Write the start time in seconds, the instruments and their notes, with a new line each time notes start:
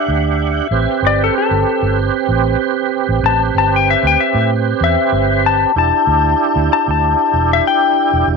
Already playing: tonewheel organ D4 G4 F#5, electric slide guitar E5
0.08 fingered electric bass D2
0.71 fingered electric bass A1, tonewheel organ C4 G4 B4
1.02 fingered electric bass G1
1.07 electric slide guitar D5
1.24 electric slide guitar A4
1.38 electric slide guitar A4
1.51 fingered electric bass G1
1.82 fingered electric bass G1
2.29 fingered electric bass A1
3.09 fingered electric bass A1
3.23 fingered electric bass A1, electric slide guitar A5
3.55 fingered electric bass G1, electric slide guitar A5
3.76 electric slide guitar G5
3.90 electric slide guitar E5
4.03 fingered electric bass D2, electric slide guitar G5
4.20 electric slide guitar E5
4.35 fingered electric bass A2
4.81 fingered electric bass E2, electric slide guitar E5
5.12 fingered electric bass G1
5.46 electric slide guitar A5
5.76 fingered electric bass E1, tonewheel organ D4 E4 G4, electric slide guitar A5
6.07 fingered electric bass D2
6.56 fingered electric bass D2
6.73 electric slide guitar A5
6.88 fingered electric bass D2, electric slide guitar A5
7.34 fingered electric bass E1
7.53 electric slide guitar E5
7.67 electric slide guitar G5
8.13 fingered electric bass E1
8.27 fingered electric bass E1